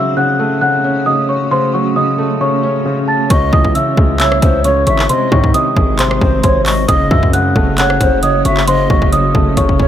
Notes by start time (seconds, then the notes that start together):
Already playing: C#3 F#3 A3 C#4 F#4 C#5 E5 E6
0.17 C#3 F#5 F#6
0.39 A3
0.61 C#3 F#5 F#6
0.84 C#4
1.06 C#3 D#5 D#6
1.29 C#5 C#6
1.51 C#3 C5 C6
1.74 F#3 C#5 C#6
1.96 C#3 D#5 D#6
2.18 A3
2.41 C#3 C#5 C#6
2.63 C#4
2.85 C#3
3.08 A5 A6
3.30 C#2 C#3 G#3 E4 C#5 D#5 C#6, kick, closed hi-hat
3.53 C#2 E3 D#5 D#6, kick
3.65 kick
3.75 C#3 E5 E6, closed hi-hat
3.97 C#2 G#3, kick
4.20 C2 C#3 C#5 E5 E6, clap, closed hi-hat
4.32 cross-stick
4.42 C#2 C#4 C5, kick, closed hi-hat
4.64 C#3 C#5 C#6, closed hi-hat
4.87 G#1 C#5 E5 C#6, closed hi-hat
4.99 clap
5.09 C3 C4 D#4 C5 D#5 C6, closed hi-hat
5.32 G#2 D#3 C#5 C#6, kick
5.44 kick
5.54 C3 D#5 D#6, closed hi-hat
5.76 G#1 G#3, kick
5.99 C3 C5 C6, clap, closed hi-hat
6.11 cross-stick
6.21 G#1 C4 C5, kick
6.43 G#1 C3 C5 C#5 C6, kick, closed hi-hat
6.66 C#5 D#5 C#6, clap, open hi-hat
6.88 F#1 C#3 A3 C#4 F#4 C#5 D#5 D#6, kick, closed hi-hat
7.11 F#2 F#3 E5 E6, kick
7.23 kick
7.33 C#3 F#5 F#6, closed hi-hat
7.56 F#1 A3, kick
7.78 C#3 C#5 F#5 F#6, clap, closed hi-hat
7.90 cross-stick
8.00 F#1 C#4 C5, kick, closed hi-hat
8.23 C#3 C#5 D#5 D#6, closed hi-hat
8.45 F#1 C#5 E5 C#6, closed hi-hat
8.57 clap
8.67 C#3 C5 D#5 C6, closed hi-hat
8.90 F#1 F#3 C#5 C#6, kick
9.02 kick
9.12 C#3 D#5 D#6, closed hi-hat
9.35 F#1 A3, kick
9.57 F#1 C#3 C#5 C#6, kick, closed hi-hat
9.69 kick
9.79 C#4 C#5, kick